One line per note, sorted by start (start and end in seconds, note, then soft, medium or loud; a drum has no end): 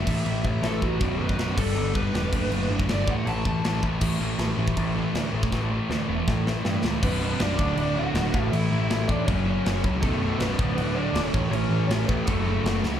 0.00 0.43 E5 loud
0.06 0.25 A1 medium
0.06 0.24 A2 loud
0.06 0.25 E3 loud
0.06 0.25 A3 loud
0.06 kick loud
0.06 crash loud
0.25 0.43 A1 loud
0.25 0.43 A2 medium
0.25 0.44 E3 medium
0.25 0.44 A3 loud
0.25 crash medium
0.44 0.61 A1 medium
0.44 0.61 A2 loud
0.44 0.62 E3 loud
0.44 0.63 A3 loud
0.44 0.63 E5 loud
0.44 kick medium
0.62 0.80 A1 loud
0.62 0.80 A2 medium
0.62 0.81 E3 medium
0.62 0.81 A3 loud
0.62 0.82 A4 loud
0.62 snare loud
0.62 crash medium
0.81 1.00 A1 medium
0.81 0.99 A2 medium
0.81 0.99 E3 medium
0.81 1.00 A3 loud
0.81 1.21 F#4 medium
0.81 kick medium
0.99 1.17 B0 loud
0.99 1.18 B1 medium
0.99 1.18 F#2 medium
0.99 1.19 B2 loud
0.99 kick loud
0.99 crash medium
1.18 1.37 B0 medium
1.18 1.37 B1 medium
1.18 1.37 F#2 medium
1.18 1.37 B2 medium
1.18 1.56 B4 medium
1.29 kick medium
1.37 1.55 B0 medium
1.37 1.56 B1 medium
1.37 1.56 F#2 medium
1.37 1.56 B2 loud
1.37 snare loud
1.37 crash medium
1.56 1.75 G1 medium
1.56 1.74 G2 loud
1.56 1.74 D3 loud
1.56 1.75 G3 loud
1.56 1.94 A4 loud
1.56 kick loud
1.56 crash loud
1.75 1.93 G1 loud
1.75 1.93 G2 medium
1.75 1.94 D3 medium
1.75 1.94 G3 loud
1.75 crash medium
1.94 2.13 G1 medium
1.94 2.13 G2 loud
1.94 2.13 D3 loud
1.94 2.13 G3 loud
1.94 2.68 B4 loud
1.94 kick medium
2.13 2.31 E1 medium
2.13 2.31 G2 medium
2.13 2.31 D3 loud
2.13 2.32 G3 loud
2.13 snare loud
2.13 crash medium
2.32 2.50 F#1 medium
2.32 2.49 D2 loud
2.32 2.50 A2 loud
2.32 2.50 D3 loud
2.32 kick loud
2.32 crash medium
2.50 2.69 F#1 loud
2.50 2.68 D2 loud
2.50 2.69 A2 loud
2.50 2.69 D3 medium
2.50 crash medium
2.70 2.88 F#1 loud
2.70 2.87 D2 medium
2.70 2.88 A2 loud
2.70 2.89 D3 medium
2.80 kick medium
2.88 3.06 G1 loud
2.88 3.06 D2 medium
2.88 3.06 A2 medium
2.88 3.07 D3 loud
2.88 3.08 D5 loud
2.88 snare loud
2.88 crash medium
3.07 3.25 A1 medium
3.07 3.25 A2 loud
3.07 3.26 E3 loud
3.07 3.26 A3 loud
3.07 3.27 F#5 medium
3.07 kick loud
3.26 3.44 A1 medium
3.26 3.44 A2 loud
3.26 3.44 E3 medium
3.26 3.44 A3 loud
3.26 3.45 A5 loud
3.26 crash medium
3.45 3.62 A1 medium
3.45 3.62 A2 loud
3.45 3.62 E3 loud
3.45 3.63 A3 loud
3.45 3.83 A5 loud
3.45 kick medium
3.63 3.81 A1 medium
3.63 3.81 A2 medium
3.63 3.81 E3 medium
3.63 3.82 A3 medium
3.63 snare loud
3.63 crash medium
3.82 4.01 A1 medium
3.82 3.99 A2 medium
3.82 3.99 E3 loud
3.82 4.00 A3 loud
3.82 kick medium
4.00 4.14 A1 loud
4.00 4.19 A2 medium
4.00 4.19 E3 medium
4.00 4.20 A3 loud
4.00 kick loud
4.00 crash loud
4.00 crash medium
4.19 4.33 A1 medium
4.19 4.38 A2 medium
4.19 4.39 E3 medium
4.19 4.39 A3 loud
4.38 4.51 A1 medium
4.38 4.57 A2 medium
4.38 4.58 E3 loud
4.38 4.58 A3 loud
4.38 snare loud
4.38 crash medium
4.57 4.70 A1 medium
4.57 4.75 A2 medium
4.57 4.76 E3 medium
4.57 4.76 A3 loud
4.68 kick medium
4.76 5.02 A1 loud
4.76 4.95 A2 loud
4.76 4.95 E3 loud
4.76 4.96 A3 loud
4.76 kick loud
4.76 crash medium
4.96 5.14 A2 medium
4.96 5.14 E3 loud
4.96 5.15 A3 medium
5.14 5.27 D2 medium
5.14 5.33 A2 loud
5.14 5.34 E3 loud
5.14 5.34 A3 loud
5.14 snare loud
5.14 crash medium
5.33 5.46 A1 medium
5.33 5.52 A2 loud
5.33 5.52 E3 medium
5.33 5.52 A3 loud
5.43 kick medium
5.52 5.78 A1 loud
5.52 5.70 A2 loud
5.52 5.71 E3 loud
5.52 5.71 A3 loud
5.52 kick loud
5.52 snare medium
5.71 5.89 A2 medium
5.71 5.90 E3 medium
5.71 5.90 A3 loud
5.90 6.02 D2 loud
5.90 6.08 A2 medium
5.90 6.08 E3 loud
5.90 6.09 A3 loud
5.90 snare medium
6.08 6.21 E1 medium
6.08 6.26 A2 medium
6.08 6.27 E3 medium
6.08 6.27 A3 loud
6.27 6.53 A1 medium
6.27 6.45 A2 medium
6.27 6.46 E3 loud
6.27 6.46 A3 loud
6.27 kick loud
6.27 snare medium
6.46 6.64 A2 medium
6.46 6.64 E3 medium
6.46 6.65 A3 loud
6.46 snare medium
6.65 6.78 G2 medium
6.65 6.82 A2 loud
6.65 6.83 E3 loud
6.65 6.83 A3 loud
6.65 snare loud
6.83 6.97 C#2 medium
6.83 7.01 A2 medium
6.83 7.01 E3 loud
6.83 7.02 A3 loud
6.83 snare loud
7.01 7.33 B0 loud
7.01 7.19 B1 medium
7.01 7.20 F#2 loud
7.01 7.20 B2 loud
7.01 7.38 B3 medium
7.01 7.38 B4 loud
7.01 kick loud
7.01 crash loud
7.01 crash medium
7.21 7.39 B1 medium
7.21 7.39 F#2 loud
7.21 7.40 B2 loud
7.40 7.55 B0 medium
7.40 7.58 B1 medium
7.40 7.58 F#2 medium
7.40 7.58 B2 loud
7.40 7.76 D4 medium
7.40 7.77 D5 loud
7.40 snare loud
7.40 crash medium
7.58 7.74 D1 medium
7.58 7.76 D2 loud
7.58 7.76 A2 loud
7.58 7.77 D3 loud
7.58 kick loud
7.77 8.07 D1 medium
7.77 7.95 D2 loud
7.77 7.96 A2 loud
7.77 7.96 D3 loud
7.77 7.96 D4 medium
7.77 7.95 D5 loud
7.77 crash medium
7.95 8.13 D2 medium
7.95 8.14 A2 loud
7.95 8.14 D3 loud
7.95 8.49 F#4 medium
7.95 8.51 F#5 loud
8.14 8.30 D1 medium
8.14 8.33 D2 medium
8.14 8.32 A2 loud
8.14 8.33 D3 loud
8.14 snare loud
8.14 crash medium
8.33 8.49 A1 medium
8.33 8.50 A2 loud
8.33 8.51 E3 loud
8.33 8.51 A3 loud
8.33 kick medium
8.51 8.67 A1 loud
8.51 8.70 A2 loud
8.51 8.70 E3 loud
8.51 8.71 A3 loud
8.51 9.05 E4 medium
8.51 9.10 E5 loud
8.51 crash medium
8.71 8.86 A1 medium
8.71 8.88 A2 medium
8.71 8.89 E3 medium
8.71 8.89 A3 loud
8.89 9.05 A1 loud
8.89 9.07 A2 medium
8.89 9.08 E3 medium
8.89 9.09 A3 loud
8.89 snare loud
8.89 crash medium
9.08 9.24 A1 medium
9.08 9.26 A2 medium
9.08 9.27 E3 medium
9.08 9.27 A3 loud
9.08 9.27 D4 medium
9.08 9.25 D5 medium
9.08 kick medium
9.25 9.58 F#1 loud
9.25 9.44 F#2 loud
9.25 9.45 C#3 loud
9.25 9.45 F#3 loud
9.25 9.45 C#4 medium
9.25 9.45 C#5 loud
9.25 kick loud
9.25 crash medium
9.45 9.63 F#2 loud
9.45 9.63 C#3 loud
9.45 9.64 F#3 medium
9.45 9.83 C#4 medium
9.45 9.81 C#5 medium
9.65 9.81 F#1 medium
9.65 9.82 F#2 medium
9.65 9.82 C#3 loud
9.65 9.82 F#3 medium
9.65 snare loud
9.65 crash medium
9.83 10.05 C#2 medium
9.83 10.01 F#2 medium
9.83 10.01 C#3 loud
9.83 10.02 F#3 loud
9.83 kick medium
10.02 10.33 B0 loud
10.02 10.20 B1 loud
10.02 10.21 F#2 loud
10.02 10.21 B2 loud
10.02 10.39 A3 medium
10.02 10.41 A4 loud
10.02 kick loud
10.02 crash medium
10.22 10.38 B1 medium
10.22 10.39 F#2 medium
10.22 10.40 B2 loud
10.38 10.55 B0 loud
10.38 10.57 B1 medium
10.38 10.58 F#2 loud
10.38 10.58 B2 loud
10.38 10.76 B3 medium
10.38 10.74 B4 loud
10.38 snare loud
10.38 crash medium
10.58 10.74 D1 loud
10.58 10.75 D2 loud
10.58 10.75 A2 loud
10.58 10.76 D3 loud
10.58 kick loud
10.76 11.07 D1 medium
10.76 10.93 D2 loud
10.76 10.94 A2 loud
10.76 10.94 D3 loud
10.76 10.96 B3 medium
10.76 10.94 B4 medium
10.76 crash medium
10.95 11.12 D2 medium
10.95 11.13 A2 medium
10.95 11.13 D3 loud
10.95 11.32 D4 medium
10.95 11.24 D5 medium
11.14 11.29 D1 loud
11.14 11.32 D2 loud
11.14 11.32 A2 loud
11.14 11.32 D3 loud
11.14 snare loud
11.14 crash medium
11.24 11.34 C#5 medium
11.33 11.49 A1 medium
11.33 11.51 A2 loud
11.33 11.51 E3 loud
11.33 11.52 A3 loud
11.33 kick loud
11.50 11.66 A1 loud
11.50 11.70 A2 medium
11.50 11.70 E3 loud
11.50 11.71 A3 loud
11.50 11.88 C#4 medium
11.50 11.87 C#5 loud
11.50 crash medium
11.69 11.85 A1 medium
11.69 11.88 A2 medium
11.69 11.89 E3 loud
11.69 11.89 A3 loud
11.88 12.04 A1 loud
11.88 12.07 A2 medium
11.88 12.07 E3 medium
11.88 12.07 A3 loud
11.88 12.06 C#5 loud
11.88 snare loud
11.88 crash medium
11.92 12.08 C#4 medium
12.06 12.24 A1 medium
12.06 12.26 A2 medium
12.06 12.26 E3 medium
12.06 12.26 A3 loud
12.06 12.27 B4 medium
12.06 kick loud
12.10 12.27 B3 medium
12.25 12.58 F#1 loud
12.25 12.46 F#2 loud
12.25 12.46 C#3 loud
12.25 12.47 F#3 loud
12.25 12.45 A3 medium
12.25 12.41 A4 loud
12.25 kick loud
12.25 crash medium
12.42 12.79 A4 medium
12.46 12.64 F#2 medium
12.46 12.65 C#3 medium
12.46 12.65 F#3 medium
12.46 12.81 A3 medium
12.64 12.79 F#1 medium
12.64 12.82 F#2 medium
12.64 12.82 C#3 loud
12.64 12.83 F#3 loud
12.64 snare loud
12.64 crash medium
12.83 12.98 C#2 medium
12.83 13.00 F#2 medium
12.83 13.00 C#3 medium
12.83 13.00 F#3 loud
12.83 snare medium